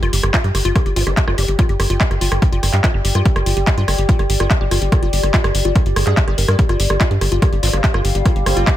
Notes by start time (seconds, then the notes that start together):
Already playing: G4
0.03 G1 F4, cross-stick, closed hi-hat
0.13 G1 G4, open hi-hat
0.23 G1 G4, cross-stick, closed hi-hat
0.33 F4 D5, kick, clap, closed hi-hat
0.44 G2 G4, closed hi-hat
0.55 G1 G4, cross-stick, open hi-hat
0.65 G1 F4, closed hi-hat
0.76 G4, kick, cross-stick, closed hi-hat
0.86 G1 G4 G5, closed hi-hat
0.96 G#1 C4 F4, open hi-hat
1.07 G1 C4 G4, cross-stick, closed hi-hat
1.17 G4, kick, clap, closed hi-hat
1.28 G1 C4 F4, cross-stick
1.38 G1 C4 G4, open hi-hat
1.48 G1 G4, closed hi-hat
1.59 F4, kick, cross-stick, closed hi-hat
1.69 G1 G4, closed hi-hat
1.80 G1 G4, cross-stick, open hi-hat
1.90 G1 F4, closed hi-hat
2.00 G4, kick, clap, closed hi-hat
2.11 G1 G4, cross-stick, closed hi-hat
2.21 G1 F4, open hi-hat
2.32 G1 G4, cross-stick, closed hi-hat
2.42 G4, kick, closed hi-hat
2.53 G1 F4, closed hi-hat
2.63 G1 G4, cross-stick, open hi-hat
2.73 G2 G4, clap, closed hi-hat
2.84 F4, kick, cross-stick, clap, closed hi-hat
2.94 G1 G4
3.05 G1 G4, open hi-hat
3.15 G2 F4, cross-stick, closed hi-hat
3.25 G4, kick, closed hi-hat
3.36 G1 G4, cross-stick, closed hi-hat
3.46 G1 F4, open hi-hat
3.57 G1 G4, closed hi-hat
3.67 G4, kick, cross-stick, clap, closed hi-hat
3.78 G2 F4, closed hi-hat
3.88 G1 G4, cross-stick, open hi-hat
3.98 G1 G4, closed hi-hat
4.09 F4, kick, closed hi-hat
4.19 G1 G4, cross-stick, closed hi-hat
4.30 G#1 G4, open hi-hat
4.40 G1 F4, cross-stick, closed hi-hat
4.50 G4, kick, clap, closed hi-hat
4.61 G1 G4
4.71 G1 F4, cross-stick, open hi-hat
4.82 G1 G4, closed hi-hat
4.92 G4, kick, cross-stick, closed hi-hat
5.03 G1 F4, closed hi-hat
5.13 G1 G4, open hi-hat
5.23 G1 G4, cross-stick, closed hi-hat
5.34 F4, kick, clap, closed hi-hat
5.44 G1 G4, cross-stick, closed hi-hat
5.55 G1 G4, open hi-hat
5.65 G1 F4, closed hi-hat
5.76 G4, kick, cross-stick, closed hi-hat
5.86 G1 G4, closed hi-hat
5.96 G1 G#4, cross-stick, open hi-hat
6.07 G2 G#4, clap, closed hi-hat
6.17 G4, kick, clap, closed hi-hat
6.28 G1 G4, cross-stick
6.38 G1 A#4, open hi-hat
6.48 G2 A#4, cross-stick, closed hi-hat
6.59 G3 G4, kick, closed hi-hat
6.69 G1 F4, cross-stick, closed hi-hat
6.80 G1 G4, open hi-hat
6.90 G1 G4, cross-stick
7.01 F4, kick, clap, closed hi-hat
7.11 G2 G4, closed hi-hat
7.16 F5
7.21 G1 G4, cross-stick, open hi-hat
7.32 G1 F4, closed hi-hat
7.42 G4, kick, cross-stick, closed hi-hat
7.53 G1 G4, closed hi-hat
7.63 G#1 C4 F4, open hi-hat
7.73 G1 C4 G4, cross-stick, closed hi-hat
7.84 G4, kick, clap, closed hi-hat
7.94 G1 F4, cross-stick
8.05 G1 G4, open hi-hat
8.15 G1 G4, closed hi-hat
8.26 F4, kick, cross-stick, closed hi-hat
8.36 G1 G4, closed hi-hat
8.46 G1 C4 G4, cross-stick, open hi-hat
8.57 G1 F4, closed hi-hat
8.67 G4, kick, clap, closed hi-hat